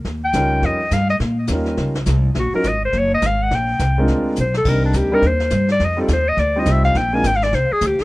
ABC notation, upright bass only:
X:1
M:4/4
L:1/8
Q:"Swing" 1/4=209
K:Bbmix
V:1 name="Upright bass" clef=bass
E,,2 _D,,2 F,,2 G,,2 | B,,2 E,,2 _D,,2 C,,2 | B,,, z A,,,2 _G,,,2 A,,,2 | B,,,2 C,,2 D,,2 _C,,2 |
C,,2 D,,2 E,,2 G,,2 | F,,2 E,,2 D,,2 C,,2 | B,,,2 A,,,2 C,, z D,, z |]